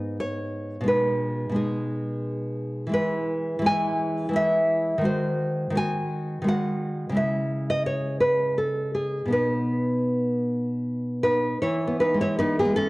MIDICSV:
0, 0, Header, 1, 2, 480
1, 0, Start_track
1, 0, Key_signature, 4, "major"
1, 0, Tempo, 684151
1, 624, Time_signature, 3, 2, 24, 8
1, 2066, Tempo, 711744
1, 3986, Tempo, 696056
1, 5426, Tempo, 728155
1, 6386, Tempo, 761421
1, 8629, End_track
2, 0, Start_track
2, 0, Title_t, "Nylon-string guitar"
2, 0, Program_c, 0, 24
2, 0, Note_on_c, 0, 44, 54
2, 0, Note_on_c, 0, 59, 48
2, 0, Note_on_c, 0, 63, 48
2, 0, Note_on_c, 0, 75, 84
2, 118, Note_off_c, 0, 75, 0
2, 140, Note_on_c, 0, 73, 90
2, 564, Note_off_c, 0, 44, 0
2, 567, Note_on_c, 0, 47, 58
2, 575, Note_off_c, 0, 59, 0
2, 584, Note_off_c, 0, 63, 0
2, 588, Note_on_c, 0, 56, 47
2, 602, Note_off_c, 0, 73, 0
2, 605, Note_on_c, 0, 63, 41
2, 617, Note_on_c, 0, 71, 84
2, 1040, Note_off_c, 0, 47, 0
2, 1048, Note_on_c, 0, 47, 55
2, 1056, Note_off_c, 0, 56, 0
2, 1065, Note_on_c, 0, 56, 53
2, 1075, Note_off_c, 0, 63, 0
2, 1082, Note_off_c, 0, 71, 0
2, 1083, Note_on_c, 0, 63, 47
2, 1093, Note_on_c, 0, 68, 75
2, 1789, Note_off_c, 0, 68, 0
2, 2010, Note_off_c, 0, 47, 0
2, 2011, Note_on_c, 0, 52, 61
2, 2018, Note_off_c, 0, 56, 0
2, 2027, Note_off_c, 0, 63, 0
2, 2029, Note_on_c, 0, 56, 54
2, 2046, Note_on_c, 0, 64, 49
2, 2059, Note_on_c, 0, 71, 104
2, 2492, Note_off_c, 0, 52, 0
2, 2500, Note_on_c, 0, 52, 69
2, 2511, Note_off_c, 0, 56, 0
2, 2519, Note_on_c, 0, 56, 59
2, 2529, Note_off_c, 0, 64, 0
2, 2533, Note_off_c, 0, 71, 0
2, 2537, Note_on_c, 0, 64, 52
2, 2549, Note_on_c, 0, 80, 108
2, 2963, Note_off_c, 0, 52, 0
2, 2971, Note_on_c, 0, 52, 66
2, 2978, Note_off_c, 0, 56, 0
2, 2986, Note_on_c, 0, 56, 49
2, 2993, Note_off_c, 0, 64, 0
2, 3001, Note_on_c, 0, 64, 58
2, 3002, Note_off_c, 0, 80, 0
2, 3018, Note_on_c, 0, 76, 108
2, 3435, Note_off_c, 0, 52, 0
2, 3438, Note_on_c, 0, 51, 70
2, 3452, Note_off_c, 0, 56, 0
2, 3460, Note_on_c, 0, 56, 55
2, 3470, Note_off_c, 0, 64, 0
2, 3474, Note_off_c, 0, 76, 0
2, 3477, Note_on_c, 0, 66, 56
2, 3486, Note_on_c, 0, 72, 91
2, 3917, Note_off_c, 0, 51, 0
2, 3926, Note_on_c, 0, 51, 66
2, 3932, Note_off_c, 0, 56, 0
2, 3940, Note_on_c, 0, 56, 49
2, 3951, Note_off_c, 0, 66, 0
2, 3959, Note_on_c, 0, 66, 57
2, 3962, Note_off_c, 0, 72, 0
2, 3971, Note_on_c, 0, 80, 117
2, 4410, Note_off_c, 0, 51, 0
2, 4418, Note_on_c, 0, 51, 63
2, 4428, Note_off_c, 0, 56, 0
2, 4435, Note_on_c, 0, 56, 60
2, 4438, Note_off_c, 0, 66, 0
2, 4439, Note_off_c, 0, 80, 0
2, 4453, Note_on_c, 0, 66, 49
2, 4464, Note_on_c, 0, 78, 99
2, 4880, Note_off_c, 0, 51, 0
2, 4883, Note_on_c, 0, 49, 66
2, 4893, Note_off_c, 0, 56, 0
2, 4901, Note_on_c, 0, 56, 58
2, 4915, Note_off_c, 0, 66, 0
2, 4918, Note_on_c, 0, 64, 55
2, 4920, Note_off_c, 0, 78, 0
2, 4933, Note_on_c, 0, 76, 97
2, 5285, Note_off_c, 0, 76, 0
2, 5300, Note_on_c, 0, 75, 99
2, 5410, Note_off_c, 0, 75, 0
2, 5413, Note_on_c, 0, 73, 83
2, 5637, Note_off_c, 0, 73, 0
2, 5640, Note_on_c, 0, 71, 82
2, 5879, Note_off_c, 0, 71, 0
2, 5887, Note_on_c, 0, 69, 79
2, 6126, Note_off_c, 0, 69, 0
2, 6129, Note_on_c, 0, 68, 72
2, 6329, Note_off_c, 0, 49, 0
2, 6332, Note_on_c, 0, 47, 56
2, 6342, Note_off_c, 0, 56, 0
2, 6347, Note_on_c, 0, 59, 44
2, 6350, Note_off_c, 0, 64, 0
2, 6365, Note_on_c, 0, 63, 42
2, 6370, Note_off_c, 0, 68, 0
2, 6377, Note_on_c, 0, 71, 81
2, 7561, Note_off_c, 0, 71, 0
2, 7579, Note_off_c, 0, 63, 0
2, 7582, Note_on_c, 0, 71, 92
2, 7587, Note_on_c, 0, 63, 58
2, 7783, Note_off_c, 0, 47, 0
2, 7790, Note_off_c, 0, 59, 0
2, 7815, Note_off_c, 0, 63, 0
2, 7820, Note_off_c, 0, 71, 0
2, 7825, Note_on_c, 0, 73, 80
2, 7829, Note_on_c, 0, 52, 69
2, 7833, Note_on_c, 0, 64, 67
2, 7987, Note_on_c, 0, 59, 68
2, 8058, Note_off_c, 0, 64, 0
2, 8061, Note_off_c, 0, 73, 0
2, 8067, Note_on_c, 0, 71, 94
2, 8076, Note_on_c, 0, 63, 73
2, 8156, Note_on_c, 0, 56, 52
2, 8187, Note_off_c, 0, 63, 0
2, 8191, Note_off_c, 0, 71, 0
2, 8199, Note_on_c, 0, 73, 101
2, 8205, Note_on_c, 0, 64, 76
2, 8307, Note_off_c, 0, 59, 0
2, 8307, Note_off_c, 0, 73, 0
2, 8310, Note_on_c, 0, 71, 106
2, 8311, Note_off_c, 0, 64, 0
2, 8316, Note_on_c, 0, 59, 63
2, 8316, Note_on_c, 0, 63, 83
2, 8425, Note_off_c, 0, 63, 0
2, 8430, Note_off_c, 0, 71, 0
2, 8437, Note_off_c, 0, 59, 0
2, 8438, Note_on_c, 0, 68, 90
2, 8445, Note_on_c, 0, 59, 68
2, 8467, Note_off_c, 0, 56, 0
2, 8475, Note_on_c, 0, 56, 53
2, 8540, Note_off_c, 0, 68, 0
2, 8542, Note_on_c, 0, 69, 115
2, 8548, Note_off_c, 0, 59, 0
2, 8549, Note_on_c, 0, 61, 88
2, 8629, Note_off_c, 0, 52, 0
2, 8629, Note_off_c, 0, 56, 0
2, 8629, Note_off_c, 0, 61, 0
2, 8629, Note_off_c, 0, 69, 0
2, 8629, End_track
0, 0, End_of_file